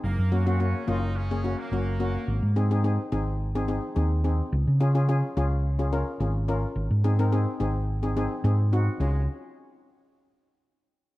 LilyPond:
<<
  \new Staff \with { instrumentName = "Steel pan" } { \time 4/4 \key des \major \tempo 4 = 107 r8 <bes des' ges'>16 <bes des' ges'>16 <bes des' ges'>16 r16 <bes des' f'>8 r16 <bes des' aes'>16 <bes des' ges'>16 r16 <bes des' ges'>16 r16 <bes des' ges'>8 | r8 <c' ees' aes'>16 <c' ees' aes'>16 <c' ees' aes'>16 r16 <c' ees' aes'>8 r16 <c' ees' aes'>16 <c' ees' aes'>16 r16 <c' ees' aes'>16 r16 <c' ees' aes'>8 | r8 <des' f' aes'>16 <des' f' aes'>16 <des' f' aes'>16 r16 <des' f' aes'>8 r16 <des' f' aes'>16 <des' f' bes'>16 r16 <des' f' aes'>16 r16 <des' f' bes'>8 | r8 <c' ees' aes'>16 <c' ees' bes'>16 <c' ees' aes'>16 r16 <c' ees' aes'>8 r16 <c' ees' aes'>16 <c' ees' aes'>16 r16 <c' ees' aes'>16 r16 <c' ees' ges'>8 |
<des' f' aes'>8 r2. r8 | }
  \new Staff \with { instrumentName = "Horn section" } { \time 4/4 \key des \major bes8. <c c'>16 <des des'>8 <ees ees'>8 <des des'>8. bes4~ bes16~ | bes8. r2. r16 | r1 | r1 |
aes8 r2. r8 | }
  \new Staff \with { instrumentName = "Fingered electric bass" } { \clef bass \time 4/4 \key des \major ges,,16 ges,4~ ges,16 ges,,4. ges,,4 | aes,,16 aes,4~ aes,16 aes,,4. ees,4 | des,16 des4~ des16 des,4. aes,,4 | aes,,16 aes,4~ aes,16 aes,,4. aes,4 |
des,8 r2. r8 | }
>>